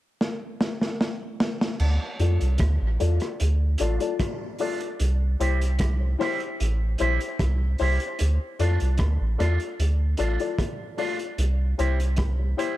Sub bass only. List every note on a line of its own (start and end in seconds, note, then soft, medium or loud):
1.80 1.99 D2 loud
2.19 2.38 F2 medium
2.41 2.58 C2 medium
2.60 2.79 D2 loud
2.81 2.98 A1 medium
3.01 3.19 E2 loud
3.41 3.76 D2 loud
3.80 3.99 A1 medium
5.00 5.36 C2 medium
5.40 6.16 C2 medium
6.61 6.96 A1 loud
7.01 7.19 A#1 medium
7.40 7.75 C2 medium
7.81 7.99 C2 medium
8.21 8.39 D2 loud
8.59 8.78 F2 medium
8.81 8.98 C2 medium
8.99 9.18 D2 medium
9.21 9.37 A1 medium
9.40 9.58 E2 medium
9.79 10.15 D2 loud
10.19 10.38 A1 medium
11.38 11.74 C2 medium
11.79 12.55 C2 medium